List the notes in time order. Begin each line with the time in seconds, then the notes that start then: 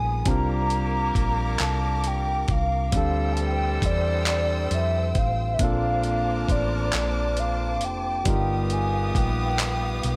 Already playing: A#1 G3 B3 D#4 F4 A#4 G#5 D#6
0.25 C2 D3 G3 A#3 C4 D4 G4 A#4 A#5 D6, kick, closed hi-hat
0.30 F4 A#4
0.70 closed hi-hat
1.15 A#1, kick, closed hi-hat
1.59 C2 A5, clap, closed hi-hat
2.04 G5, closed hi-hat
2.48 C2 F5, kick, closed hi-hat
2.92 D2 E3 G3 C4 D4 A4 C5 G5 E6, kick, closed hi-hat
2.96 G4 A4
3.33 A5
3.37 G5, closed hi-hat
3.82 E2 D5, kick, closed hi-hat
4.26 clap, closed hi-hat
4.71 F2 E5, closed hi-hat
5.15 A1 F5, kick, closed hi-hat
5.54 E5
5.59 A#1 F3 A#3 C4 D4 A#4 C5 F5 A5 D6, kick, closed hi-hat
5.63 F4 A4
6.03 closed hi-hat
6.49 A1 D5, kick, closed hi-hat
6.93 A#1 D5, clap, closed hi-hat
7.37 F5, closed hi-hat
7.81 F1 G5, closed hi-hat
8.25 G1 D#3 G3 B3 D#4 F4 G4 F5 D#6, kick, closed hi-hat
8.30 A#4
8.70 G#5, closed hi-hat
9.15 A#1 G5, kick, closed hi-hat
9.59 clap, closed hi-hat
10.03 B1, closed hi-hat